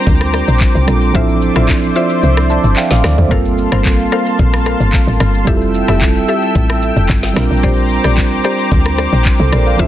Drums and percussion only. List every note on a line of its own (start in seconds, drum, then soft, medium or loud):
0.07 kick loud
0.07 shaker medium
0.21 cross-stick loud
0.21 shaker soft
0.33 cross-stick medium
0.33 shaker loud
0.48 shaker medium
0.60 kick loud
0.60 clap medium
0.60 shaker medium
0.75 shaker medium
0.88 cross-stick medium
0.88 shaker loud
1.02 shaker soft
1.15 kick loud
1.15 shaker medium
1.29 shaker medium
1.42 shaker medium
1.56 cross-stick loud
1.56 shaker medium
1.69 kick loud
1.69 clap loud
1.69 shaker medium
1.83 shaker medium
1.96 shaker medium
2.10 shaker medium
2.23 shaker medium
2.37 cross-stick loud
2.37 shaker soft
2.50 shaker medium
2.64 shaker medium
2.77 clap medium
2.77 shaker medium
2.91 snare medium
2.91 shaker medium
3.04 cross-stick loud
3.04 snare medium
3.04 open hi-hat medium
3.04 shaker medium
3.18 mid tom loud
3.18 shaker soft
3.31 kick loud
3.31 shaker medium
3.45 shaker medium
3.58 shaker medium
3.72 cross-stick loud
3.72 shaker medium
3.85 kick loud
3.85 clap loud
3.85 shaker medium
3.99 shaker medium
4.12 cross-stick medium
4.12 shaker medium
4.26 shaker medium
4.39 kick loud
4.39 shaker medium
4.53 cross-stick loud
4.53 shaker soft
4.66 cross-stick medium
4.66 shaker loud
4.80 shaker medium
4.93 kick loud
4.93 clap medium
4.93 shaker medium
5.08 shaker medium
5.20 cross-stick medium
5.20 shaker loud
5.34 shaker soft
5.47 kick loud
5.47 shaker medium
5.61 shaker medium
5.74 shaker medium
5.88 cross-stick loud
5.88 shaker medium
6.01 kick loud
6.01 clap loud
6.01 shaker medium
6.15 shaker medium
6.29 shaker medium
6.42 shaker medium
6.55 kick loud
6.55 shaker medium
6.70 cross-stick loud
6.70 shaker soft
6.82 shaker loud
6.96 shaker medium
7.09 kick loud
7.09 clap medium
7.09 shaker medium
7.23 snare medium
7.23 shaker medium
7.36 cross-stick loud
7.36 snare medium
7.36 shaker medium
7.51 shaker soft
7.63 kick loud
7.63 shaker medium
7.78 shaker medium
7.90 shaker medium
8.04 cross-stick loud
8.04 shaker medium
8.17 kick loud
8.17 clap loud
8.17 shaker medium
8.31 shaker medium
8.45 cross-stick medium
8.45 shaker medium
8.58 shaker medium
8.71 kick loud
8.71 shaker medium
8.85 cross-stick loud
8.85 shaker soft
8.98 cross-stick medium
8.98 shaker loud
9.12 shaker medium
9.25 kick loud
9.25 clap medium
9.25 shaker medium
9.40 shaker medium
9.52 cross-stick loud
9.52 shaker loud
9.67 shaker soft
9.79 kick loud
9.79 shaker medium